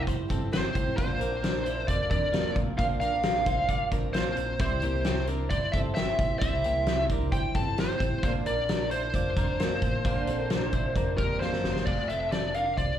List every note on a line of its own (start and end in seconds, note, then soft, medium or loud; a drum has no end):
0.00 0.27 G3 medium
0.00 0.29 C4 medium
0.00 0.29 E4 medium
0.00 0.30 G4 medium
0.07 0.27 G1 medium
0.07 0.30 E4 medium
0.07 0.30 C5 medium
0.07 kick medium
0.07 closed hi-hat medium
0.28 0.69 G1 medium
0.28 0.50 G3 medium
0.28 0.51 C4 medium
0.28 0.53 C4 medium
0.28 0.52 E4 medium
0.28 0.53 G4 medium
0.28 0.53 A4 medium
0.28 kick medium
0.28 closed hi-hat medium
0.51 0.63 G3 medium
0.51 0.64 C4 medium
0.51 0.96 C4 medium
0.51 0.64 E4 medium
0.51 0.95 G4 medium
0.51 0.62 G4 medium
0.51 0.96 C5 medium
0.51 snare loud
0.51 closed hi-hat medium
0.63 0.98 C4 soft
0.63 0.98 E4 soft
0.63 0.97 G4 medium
0.75 0.95 A1 loud
0.75 kick medium
0.75 closed hi-hat medium
0.97 1.17 A#1 loud
0.97 1.32 A#2 medium
0.97 1.32 D3 medium
0.97 1.32 F3 medium
0.97 1.21 A#3 medium
0.97 1.32 C4 medium
0.97 1.31 D4 medium
0.97 1.21 F4 medium
0.97 1.30 A#4 medium
0.97 1.88 C5 medium
0.97 kick loud
0.97 closed hi-hat medium
1.20 1.85 A#1 medium
1.20 1.43 D4 medium
1.20 1.42 A#4 medium
1.20 closed hi-hat medium
1.31 1.64 F3 soft
1.31 1.65 C4 soft
1.31 1.66 D4 soft
1.31 1.65 A#4 medium
1.43 1.66 D4 medium
1.43 1.65 A#4 medium
1.43 snare loud
1.43 closed hi-hat medium
1.65 2.09 F3 medium
1.65 2.11 C4 medium
1.65 2.10 D4 medium
1.65 1.89 E4 medium
1.65 2.11 A#4 medium
1.65 1.88 C5 medium
1.65 closed hi-hat medium
1.88 2.08 F2 loud
1.88 2.11 F4 medium
1.88 2.11 D5 medium
1.88 2.09 D5 loud
1.88 kick medium
1.88 closed hi-hat medium
2.10 2.49 F2 medium
2.10 2.32 F3 medium
2.10 2.33 C4 medium
2.10 2.32 D4 medium
2.10 2.34 D4 medium
2.10 2.34 A#4 medium
2.10 2.53 D5 loud
2.10 kick medium
2.10 closed hi-hat medium
2.32 2.45 F3 medium
2.32 2.76 A#3 medium
2.32 2.45 C4 medium
2.32 2.44 D4 medium
2.32 2.76 F4 medium
2.32 2.43 A#4 medium
2.32 snare loud
2.32 closed hi-hat medium
2.45 2.78 F3 soft
2.45 2.79 C4 soft
2.45 2.79 D4 medium
2.45 2.79 A#4 medium
2.56 2.75 A1 medium
2.56 kick loud
2.56 closed hi-hat medium
2.77 2.98 A#1 loud
2.77 3.13 A#2 medium
2.77 3.13 D3 medium
2.77 3.13 F3 medium
2.77 3.01 A#3 medium
2.77 3.13 C4 medium
2.77 3.13 D4 medium
2.77 3.01 F4 medium
2.77 3.12 A#4 medium
2.77 2.84 F5 medium
2.77 kick loud
2.77 closed hi-hat medium
3.00 3.77 A#1 loud
3.00 3.23 D4 medium
3.00 3.23 A#4 medium
3.00 3.88 F5 loud
3.00 closed hi-hat medium
3.13 3.46 F3 soft
3.13 3.47 C4 soft
3.13 3.47 D4 soft
3.13 3.47 A#4 soft
3.23 3.47 D4 medium
3.23 3.47 A#4 medium
3.23 snare loud
3.23 closed hi-hat medium
3.46 3.90 F3 medium
3.46 3.92 C4 medium
3.46 3.92 D4 medium
3.46 3.70 E4 medium
3.46 3.69 C5 medium
3.46 kick medium
3.46 closed hi-hat medium
3.50 3.93 A#4 medium
3.69 3.92 F4 medium
3.69 3.92 D5 medium
3.69 kick medium
3.69 closed hi-hat medium
3.92 4.31 A#1 medium
3.92 4.13 F3 medium
3.92 4.14 C4 medium
3.92 4.14 D4 medium
3.92 4.15 D4 medium
3.92 4.15 A#4 medium
3.92 kick medium
3.92 closed hi-hat medium
4.13 4.26 F3 medium
4.13 4.58 A#3 medium
4.13 4.26 C4 medium
4.13 4.26 D4 medium
4.13 4.58 F4 medium
4.13 4.25 A#4 medium
4.13 4.60 C5 medium
4.13 snare loud
4.13 closed hi-hat medium
4.26 4.60 F3 soft
4.26 4.59 C4 soft
4.26 4.60 D4 medium
4.26 4.60 A#4 medium
4.37 4.57 A#1 medium
4.37 closed hi-hat medium
4.59 4.79 C2 loud
4.59 4.94 C3 medium
4.59 4.95 G3 medium
4.59 4.83 G3 medium
4.59 4.95 C4 medium
4.59 4.82 E4 medium
4.59 4.95 E4 medium
4.59 5.25 C5 medium
4.59 4.94 C5 medium
4.59 kick loud
4.59 closed hi-hat medium
4.82 5.47 C2 loud
4.82 5.06 A#3 medium
4.82 5.04 G4 medium
4.82 closed hi-hat medium
4.95 5.28 C4 soft
4.95 5.29 E4 soft
4.95 5.29 C5 soft
5.05 5.28 C4 medium
5.05 5.28 G4 medium
5.05 snare loud
5.05 closed hi-hat medium
5.27 5.72 G3 medium
5.27 5.75 C4 medium
5.27 5.51 D4 medium
5.27 5.74 E4 medium
5.27 5.50 A#4 medium
5.27 5.76 C5 medium
5.27 closed hi-hat medium
5.50 5.70 G1 medium
5.50 5.74 E4 medium
5.50 5.74 C5 medium
5.50 5.72 D5 medium
5.50 kick medium
5.50 closed hi-hat medium
5.72 6.12 G1 medium
5.72 5.94 G3 medium
5.72 5.97 C4 medium
5.72 5.95 C4 medium
5.72 5.96 E4 medium
5.72 5.97 A4 medium
5.72 5.78 E5 medium
5.72 kick loud
5.72 closed hi-hat medium
5.76 5.97 C5 medium
5.95 6.07 G3 medium
5.95 6.08 C4 medium
5.95 6.40 C4 medium
5.95 6.07 E4 medium
5.95 6.39 G4 medium
5.95 6.05 C5 medium
5.95 6.38 E5 loud
5.95 snare loud
5.95 closed hi-hat medium
6.06 6.40 C4 soft
6.06 6.41 E4 soft
6.06 6.41 C5 soft
6.19 6.38 A#1 medium
6.19 kick medium
6.19 closed hi-hat medium
6.39 6.61 C2 loud
6.39 6.76 C3 medium
6.39 6.76 G3 medium
6.39 6.65 G3 medium
6.39 6.76 C4 medium
6.39 6.65 E4 medium
6.39 6.75 E4 medium
6.39 6.74 C5 medium
6.39 7.05 E5 medium
6.39 kick loud
6.39 closed hi-hat medium
6.64 7.29 C2 medium
6.64 6.88 A#3 medium
6.64 6.87 G4 medium
6.64 closed hi-hat medium
6.75 7.10 C4 soft
6.75 7.10 E4 soft
6.75 7.10 C5 medium
6.87 7.11 C4 medium
6.87 7.10 G4 medium
6.87 snare loud
6.87 closed hi-hat medium
7.10 7.53 G3 medium
7.10 7.55 C4 medium
7.10 7.33 D4 medium
7.10 7.55 E4 medium
7.10 7.32 A#4 medium
7.10 7.56 C5 medium
7.10 kick medium
7.10 closed hi-hat medium
7.32 7.52 G1 medium
7.32 7.56 E4 medium
7.32 7.55 C5 medium
7.32 7.56 G5 loud
7.32 kick medium
7.32 closed hi-hat medium
7.54 7.94 G1 medium
7.54 7.77 G3 medium
7.54 7.78 C4 medium
7.54 7.78 E4 medium
7.54 7.78 A4 medium
7.54 7.79 C5 medium
7.54 7.77 A5 medium
7.54 kick medium
7.54 closed hi-hat medium
7.78 7.90 G3 medium
7.78 8.21 C4 medium
7.78 7.90 C4 medium
7.78 7.89 E4 medium
7.78 8.21 G4 medium
7.78 8.23 C5 medium
7.78 7.88 C5 medium
7.78 snare loud
7.78 closed hi-hat medium
7.89 8.23 C4 soft
7.89 8.24 E4 soft
7.89 8.23 C5 medium
8.00 8.20 A1 medium
8.00 kick medium
8.00 closed hi-hat medium
8.23 8.43 A#1 loud
8.23 8.58 A#2 medium
8.23 8.58 D3 medium
8.23 8.58 F3 medium
8.23 8.46 A#3 medium
8.23 8.57 C4 medium
8.23 8.57 D4 medium
8.23 8.46 F4 medium
8.23 8.55 A#4 medium
8.23 8.30 C5 medium
8.23 kick loud
8.23 closed hi-hat medium
8.45 9.11 A#1 medium
8.45 8.69 D4 medium
8.45 8.68 A#4 medium
8.45 8.91 D5 medium
8.45 closed hi-hat medium
8.56 8.89 F3 soft
8.56 8.91 C4 soft
8.56 8.92 D4 soft
8.56 8.91 A#4 medium
8.69 8.92 D4 medium
8.69 8.92 A#4 medium
8.69 snare loud
8.69 closed hi-hat medium
8.91 9.36 F3 medium
8.91 9.37 C4 medium
8.91 9.39 D4 medium
8.91 9.15 E4 medium
8.91 9.38 A#4 medium
8.91 11.37 C5 medium
8.91 9.15 C5 medium
8.91 closed hi-hat medium
9.14 9.34 F2 loud
9.14 9.38 F4 medium
9.14 9.37 D5 medium
9.14 kick medium
9.14 closed hi-hat medium
9.37 9.75 F2 medium
9.37 9.58 F3 medium
9.37 9.59 C4 medium
9.37 9.60 D4 medium
9.37 9.60 A#4 medium
9.37 9.61 A#4 medium
9.37 kick medium
9.37 closed hi-hat medium
9.59 9.71 F3 medium
9.59 10.03 A#3 medium
9.59 9.71 C4 medium
9.59 9.72 D4 medium
9.59 10.03 F4 medium
9.59 9.70 A#4 medium
9.59 snare loud
9.59 closed hi-hat medium
9.72 10.04 F3 soft
9.72 10.04 C4 medium
9.72 10.05 D4 medium
9.72 10.05 A#4 medium
9.82 10.02 A1 medium
9.82 kick medium
9.82 closed hi-hat medium
10.05 10.24 A#1 loud
10.05 10.39 A#2 medium
10.05 10.39 D3 medium
10.05 10.39 F3 medium
10.05 10.29 A#3 medium
10.05 10.40 C4 medium
10.05 10.39 D4 medium
10.05 10.28 F4 medium
10.05 10.38 A#4 loud
10.05 kick loud
10.05 closed hi-hat medium
10.27 10.93 A#1 loud
10.27 10.51 C4 medium
10.27 10.50 A4 medium
10.27 closed hi-hat medium
10.39 10.71 F3 soft
10.39 10.72 C4 soft
10.39 10.73 D4 medium
10.39 10.73 A#4 medium
10.50 10.74 D4 medium
10.50 10.73 A#4 medium
10.50 snare loud
10.50 closed hi-hat medium
10.72 11.18 F3 medium
10.72 11.19 C4 medium
10.72 11.19 D4 medium
10.72 10.97 E4 medium
10.72 11.19 A#4 medium
10.72 10.96 C5 medium
10.72 kick medium
10.72 closed hi-hat medium
10.96 11.15 F2 medium
10.96 11.19 D4 medium
10.96 11.19 A#4 medium
10.96 kick medium
10.96 closed hi-hat medium
11.18 11.57 F2 medium
11.18 11.40 F3 medium
11.18 11.41 A#3 medium
11.18 11.42 C4 medium
11.18 11.42 D4 medium
11.18 11.42 G4 medium
11.18 11.40 A#4 medium
11.18 11.43 A#4 medium
11.18 kick medium
11.18 closed hi-hat medium
11.40 11.53 F3 medium
11.40 11.85 A#3 medium
11.40 11.53 C4 medium
11.40 11.53 D4 medium
11.40 11.84 F4 medium
11.40 11.51 A#4 medium
11.40 11.88 C5 medium
11.40 snare medium
11.53 11.88 F3 soft
11.53 11.88 C4 medium
11.53 11.88 D4 medium
11.53 11.87 A#4 medium
11.53 snare medium
11.64 11.83 G1 medium
11.64 snare medium
11.76 snare medium
11.86 12.06 F1 medium
11.86 12.10 A3 medium
11.86 12.10 F4 medium
11.86 12.07 D5 medium
11.86 kick loud
11.86 crash medium
12.09 12.75 F1 medium
12.09 12.33 C4 soft
12.09 12.32 A4 medium
12.09 12.31 E5 medium
12.09 closed hi-hat medium
12.32 12.56 C4 medium
12.32 12.55 A4 medium
12.32 12.54 D5 medium
12.32 snare loud
12.32 closed hi-hat medium
12.54 12.79 D4 medium
12.54 12.78 A#4 medium
12.54 12.77 F5 medium
12.54 closed hi-hat medium
12.77 12.97 C2 medium
12.77 12.99 F4 soft
12.77 12.99 C5 medium
12.77 12.99 D5 medium
12.77 kick medium
12.77 closed hi-hat medium